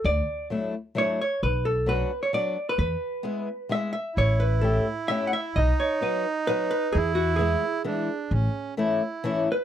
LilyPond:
<<
  \new Staff \with { instrumentName = "Hollow-body jazz guitar" } { \time 3/4 \key a \major \tempo 4 = 131 d''4 r4 cis''8 cis''8 | b'8 a'8 b'8. cis''16 d''8. b'16 | b'2 e''8 e''8 | cis''8 b'8 a'8 r8 e''16. fis''32 e''8 |
dis''8 cis''8 b'8 r8 b'8 b'8 | gis'8 fis'8 gis'2~ | gis'2 r8 b'8 | }
  \new Staff \with { instrumentName = "Accordion" } { \time 3/4 \key a \major r2. | r2. | r2. | e'2. |
dis'2. | e'2 d'4 | cis'4 e'4. r8 | }
  \new Staff \with { instrumentName = "Steel-string acoustic guitar" } { \time 3/4 \key a \major r4 <fis a d' e'>8 r8 <fis a d' e'>8 r8 | r4 <fis b d' fis'>8 r8 <fis b d' fis'>8 r8 | r4 <gis b e' gis'>8 r8 <gis b e' gis'>8 r8 | r4 <a cis' e' g'>8 r8 <a cis' e' g'>8 r8 |
r4 <fis b dis' fis'>8 r8 <fis b dis' fis'>8 r8 | r4 <e gis b e'>8 r8 <e gis b e'>8 r8 | r4 <e a cis' e'>8 r8 <e a cis' e'>8 r8 | }
  \new Staff \with { instrumentName = "Upright bass" } { \clef bass \time 3/4 \key a \major d,8 r2 r8 | b,,2 r4 | e,8 r2 r8 | a,,2 r4 |
b,,8 r2 r8 | e,2 r4 | a,,8 r2 r8 | }
>>